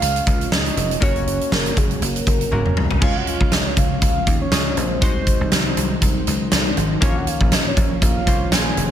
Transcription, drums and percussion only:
0.02 closed hi-hat medium
0.16 closed hi-hat soft
0.27 kick medium
0.27 closed hi-hat medium
0.41 closed hi-hat soft
0.52 snare loud
0.66 closed hi-hat soft
0.77 closed hi-hat medium
0.91 closed hi-hat medium
1.02 kick loud
1.02 closed hi-hat medium
1.16 closed hi-hat soft
1.27 closed hi-hat medium
1.41 closed hi-hat soft
1.52 snare medium
1.66 closed hi-hat soft
1.77 kick medium
1.77 closed hi-hat medium
1.91 closed hi-hat soft
2.02 closed hi-hat medium
2.16 closed hi-hat medium
2.27 kick medium
2.27 closed hi-hat medium
2.41 closed hi-hat medium
2.52 high tom soft
2.66 mid tom medium
2.77 mid tom medium
2.91 floor tom medium
3.02 kick loud
3.02 crash medium
3.27 closed hi-hat medium
3.41 kick medium
3.52 snare medium
3.52 closed hi-hat medium
3.77 kick medium
3.77 closed hi-hat medium
4.02 kick loud
4.02 closed hi-hat medium
4.27 kick medium
4.27 closed hi-hat medium
4.52 snare loud
4.52 closed hi-hat medium
4.77 closed hi-hat medium
5.02 kick loud
5.02 closed hi-hat medium
5.27 kick medium
5.27 closed hi-hat medium
5.52 snare loud
5.52 closed hi-hat medium
5.77 closed hi-hat medium
6.02 kick medium
6.02 closed hi-hat medium
6.27 closed hi-hat medium
6.52 snare loud
6.52 closed hi-hat medium
6.77 closed hi-hat medium
7.02 kick loud
7.02 closed hi-hat medium
7.27 closed hi-hat medium
7.41 kick medium
7.52 snare loud
7.52 closed hi-hat medium
7.77 kick medium
7.77 closed hi-hat medium
8.02 kick loud
8.02 closed hi-hat medium
8.27 kick medium
8.27 closed hi-hat medium
8.52 snare loud
8.52 closed hi-hat medium
8.77 closed hi-hat medium

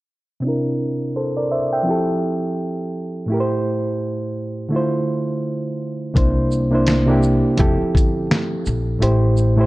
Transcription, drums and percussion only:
6.16 kick loud
6.16 closed hi-hat medium
6.51 shaker soft
6.87 snare medium
6.87 closed hi-hat medium
7.23 shaker soft
7.58 kick medium
7.58 closed hi-hat medium
7.95 kick medium
7.95 closed hi-hat soft
7.95 shaker soft
8.31 snare loud
8.31 closed hi-hat medium
8.66 shaker soft
9.02 closed hi-hat medium
9.37 shaker soft

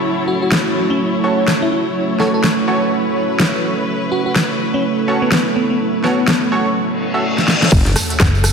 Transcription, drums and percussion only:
0.52 snare loud
1.48 snare loud
2.20 snare soft
2.44 snare loud
3.40 snare loud
4.36 snare loud
5.32 snare loud
6.04 snare soft
6.28 snare loud
7.38 snare soft
7.48 snare medium
7.62 snare medium
7.72 kick loud
7.72 crash loud
7.72 tambourine soft
7.86 snare soft
7.86 closed hi-hat medium
7.86 tambourine soft
7.96 cross-stick medium
7.96 open hi-hat loud
7.96 tambourine medium
8.10 closed hi-hat medium
8.10 tambourine soft
8.20 kick loud
8.20 cross-stick medium
8.20 snare loud
8.20 tambourine soft
8.35 tambourine soft
8.44 cross-stick medium
8.44 open hi-hat loud
8.44 tambourine medium

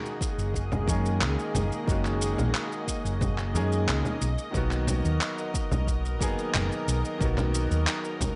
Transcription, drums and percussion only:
0.06 shaker soft
0.21 kick medium
0.21 shaker medium
0.39 shaker soft
0.54 kick medium
0.54 shaker soft
0.72 low conga medium
0.72 shaker soft
0.88 kick loud
0.88 shaker medium
1.06 shaker soft
1.21 clap medium
1.21 shaker soft
1.39 shaker soft
1.55 low conga medium
1.55 shaker medium
1.72 shaker soft
1.88 kick loud
1.88 shaker soft
2.05 clap soft
2.05 shaker soft
2.22 shaker medium
2.38 low conga medium
2.38 shaker soft
2.55 clap loud
2.55 shaker soft
2.72 shaker soft
2.88 kick medium
2.88 shaker medium
3.06 shaker soft
3.21 kick loud
3.21 low conga medium
3.21 shaker soft
3.38 clap soft
3.38 shaker soft
3.55 shaker medium
3.72 shaker soft
3.88 clap medium
3.88 shaker soft
4.05 low conga medium
4.05 shaker soft
4.22 shaker medium
4.38 shaker soft
4.54 kick loud
4.54 shaker soft
4.71 clap soft
4.71 shaker soft
4.87 low conga medium
4.87 shaker medium
5.05 shaker soft
5.21 clap medium
5.21 shaker soft
5.38 shaker soft
5.54 kick loud
5.54 shaker medium
5.71 low conga medium
5.71 shaker soft
5.87 kick medium
5.87 shaker soft
6.05 shaker soft
6.21 kick loud
6.21 shaker medium
6.39 shaker soft
6.54 clap medium
6.54 low conga medium
6.54 shaker soft
6.72 shaker soft
6.88 shaker medium
7.05 shaker soft
7.21 kick loud
7.21 shaker soft
7.38 clap soft
7.38 low conga medium
7.38 shaker soft
7.54 shaker medium
7.71 shaker soft
7.87 clap medium
7.87 shaker soft
8.05 shaker soft
8.21 kick medium
8.21 low conga medium
8.21 shaker medium

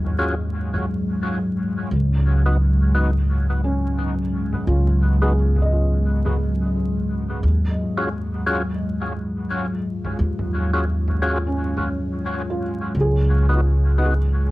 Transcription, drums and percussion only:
0.05 low conga medium
0.73 low conga medium
4.53 low conga soft
4.87 low conga soft
5.56 low conga soft
6.25 low conga medium
10.04 low conga soft
10.39 low conga soft
11.08 low conga soft
11.77 low conga medium

